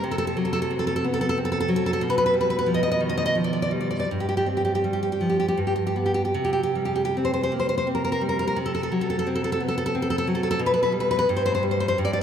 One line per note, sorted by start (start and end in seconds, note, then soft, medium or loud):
0.04 1.98 C3 medium
0.11 0.17 A4 medium
0.18 0.26 A4 medium
0.27 0.36 A4 medium
0.37 1.38 F#3 soft
0.45 0.52 A4 medium
0.53 0.61 A4 medium
0.62 0.71 A4 medium
0.70 1.36 C4 soft
0.79 0.86 A4 medium
0.87 0.95 A4 medium
0.96 1.05 A4 medium
1.04 2.01 B3 soft
1.14 1.20 A4 medium
1.21 1.28 A4 medium
1.29 1.37 A4 medium
1.38 2.01 C4 soft
1.45 1.51 A4 medium
1.52 1.59 A4 medium
1.60 1.69 A4 medium
1.68 2.01 F#3 soft
1.76 1.85 A4 medium
1.86 1.92 A4 medium
1.93 2.01 A4 medium
2.01 4.04 B2 medium
2.10 2.17 B4 medium
2.18 2.25 B4 medium
2.26 2.34 B4 medium
2.34 3.34 G3 soft
2.41 2.49 B4 medium
2.50 2.57 B4 medium
2.59 2.67 B4 medium
2.66 3.34 F3 soft
2.74 2.82 D#5 medium
2.83 2.90 D#5 medium
2.92 3.00 D#5 medium
3.00 4.09 D#3 soft
3.09 3.16 D#5 medium
3.18 3.24 D#5 medium
3.26 3.34 D#5 medium
3.35 4.09 F3 soft
3.44 3.52 D5 medium
3.53 3.61 D5 medium
3.62 3.71 D5 medium
3.71 4.08 G3 soft
3.81 3.89 D5 soft
3.91 3.98 D5 soft
4.00 4.09 D5 medium
4.11 5.56 G2 soft
4.20 4.27 G4 soft
4.29 4.36 G4 soft
4.37 4.46 G4 medium
4.46 5.58 C4 soft
4.57 4.63 G4 soft
4.65 4.74 G4 soft
4.75 4.84 G4 medium
4.84 5.59 G3 soft
4.93 5.01 G4 soft
5.03 5.11 G4 soft
5.12 5.21 G4 soft
5.21 5.58 F3 soft
5.30 5.38 G4 soft
5.40 5.47 G4 soft
5.48 5.58 G4 medium
5.57 6.32 G2 soft
5.67 5.74 G4 soft
5.87 5.96 G4 medium
5.96 6.31 B3 soft
6.06 6.13 G4 soft
6.14 6.24 G4 soft
6.25 6.35 G4 medium
6.34 8.54 C3 soft
6.45 6.52 G4 medium
6.53 6.62 G4 medium
6.63 6.74 G4 medium
6.75 7.88 G3 soft
6.85 6.94 G4 medium
6.96 7.04 G4 medium
7.05 7.15 G4 medium
7.17 7.86 C4 soft
7.25 7.32 C5 medium
7.34 7.42 C5 medium
7.43 7.52 C5 medium
7.52 8.58 A#3 soft
7.60 7.68 C5 medium
7.69 7.76 C5 medium
7.78 7.87 C5 medium
7.87 8.58 C4 soft
7.95 8.03 A#4 medium
8.05 8.11 A#4 medium
8.12 8.22 A#4 medium
8.21 8.57 G3 soft
8.29 8.38 A#4 medium
8.39 8.46 A#4 medium
8.47 8.57 A#4 medium
8.56 10.55 C3 soft
8.66 8.73 A4 medium
8.75 8.82 A4 medium
8.83 8.92 A4 medium
8.92 9.94 F#3 soft
9.01 9.09 A4 medium
9.10 9.18 A4 medium
9.19 9.27 A4 medium
9.27 9.94 C4 soft
9.35 9.43 A4 medium
9.44 9.51 A4 medium
9.52 9.61 A4 medium
9.60 10.59 B3 soft
9.68 9.76 A4 medium
9.78 9.85 A4 medium
9.86 9.94 A4 medium
9.95 10.60 C4 soft
10.02 10.09 A4 medium
10.10 10.17 A4 medium
10.18 10.27 A4 medium
10.27 10.60 F#3 soft
10.35 10.42 A4 medium
10.43 10.49 A4 medium
10.51 10.59 A4 medium
10.59 11.25 B2 medium
10.66 10.72 B4 medium
10.74 10.81 B4 medium
10.83 10.92 B4 medium
10.92 11.23 G3 soft
11.00 11.09 B4 medium
11.11 11.17 B4 medium
11.19 11.27 B4 medium
11.29 11.96 G2 medium
11.37 11.44 C5 medium
11.46 11.53 C5 medium
11.55 11.63 C5 medium
11.63 11.94 G3 soft
11.71 11.79 C5 medium
11.80 11.87 C5 medium
11.88 11.97 C5 medium
11.98 12.23 G2 medium
12.05 12.12 D5 medium
12.13 12.20 D5 medium